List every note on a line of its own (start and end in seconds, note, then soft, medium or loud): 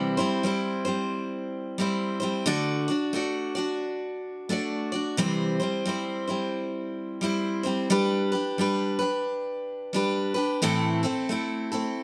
0.00 0.17 C3 medium
0.00 0.18 E3 loud
0.00 0.18 G3 loud
0.00 0.18 C4 loud
0.00 0.17 E4 loud
0.00 0.16 C5 medium
0.17 0.42 G3 medium
0.17 0.43 C4 medium
0.17 0.44 E4 medium
0.17 0.44 C5 medium
0.43 0.86 G3 medium
0.43 0.86 C4 medium
0.43 0.85 E4 medium
0.43 0.84 C5 medium
0.85 1.77 G3 soft
0.85 1.78 C4 medium
0.85 1.79 E4 medium
0.85 1.79 C5 medium
1.78 2.21 G3 medium
1.78 2.21 C4 medium
1.78 2.20 E4 medium
1.78 2.19 C5 medium
2.20 2.46 G3 medium
2.20 2.47 C4 medium
2.20 2.47 E4 medium
2.20 2.47 C5 medium
2.46 2.88 D3 medium
2.46 2.89 A3 medium
2.46 2.89 D4 loud
2.46 2.88 F#4 loud
2.46 2.87 D5 loud
2.88 3.13 D4 medium
2.88 3.14 F#4 medium
2.88 3.15 D5 medium
3.13 3.56 A3 medium
3.13 3.57 D4 medium
3.13 3.55 F#4 medium
3.13 3.54 D5 medium
3.55 4.49 D4 soft
3.55 4.50 F#4 medium
3.55 4.50 D5 medium
4.49 4.92 A3 medium
4.49 4.92 D4 medium
4.49 4.92 F#4 medium
4.49 4.91 D5 medium
4.92 5.19 D4 soft
4.92 5.19 F#4 medium
4.92 5.18 D5 medium
5.17 5.60 C3 loud
5.17 5.60 E3 medium
5.17 5.60 G3 medium
5.17 5.60 C4 loud
5.17 5.59 E4 medium
5.17 5.58 C5 loud
5.60 5.84 G3 medium
5.60 5.85 C4 medium
5.60 5.86 E4 medium
5.60 5.86 C5 medium
5.86 6.28 G3 medium
5.86 6.29 C4 medium
5.86 6.27 E4 medium
5.86 6.26 C5 medium
6.28 7.20 G3 medium
6.28 7.21 C4 soft
6.28 7.22 E4 medium
6.28 7.22 C5 medium
7.21 7.64 G3 medium
7.21 7.64 C4 medium
7.21 7.64 E4 medium
7.21 7.62 C5 medium
7.63 7.89 G3 medium
7.63 7.90 C4 medium
7.63 7.91 E4 medium
7.63 7.90 C5 medium
7.90 8.32 G3 medium
7.90 8.32 D4 medium
7.90 8.32 G4 loud
7.90 8.31 B4 medium
8.32 8.58 D4 soft
8.32 8.59 G4 medium
8.32 8.58 B4 medium
8.58 9.00 G3 medium
8.58 9.01 D4 medium
8.58 9.00 G4 medium
8.58 8.98 B4 medium
8.99 9.93 D4 soft
8.99 9.95 G4 soft
8.99 9.94 B4 medium
9.93 10.36 G3 medium
9.93 10.36 D4 medium
9.93 10.35 G4 medium
9.93 10.33 B4 medium
10.34 10.62 D4 medium
10.34 10.62 G4 medium
10.34 10.61 B4 medium
10.62 11.04 A2 medium
10.62 11.04 E3 medium
10.62 11.04 A3 loud
10.62 11.03 C4 loud
10.62 11.03 E4 medium
10.62 11.02 A4 loud
11.03 11.28 A3 medium
11.03 11.29 C4 medium
11.03 11.30 E4 medium
11.03 11.30 A4 medium
11.29 11.72 A3 medium
11.29 11.72 C4 medium
11.29 11.72 E4 medium
11.29 11.70 A4 medium
11.72 12.03 A3 soft
11.72 12.03 C4 medium
11.72 12.03 E4 medium
11.72 12.03 A4 medium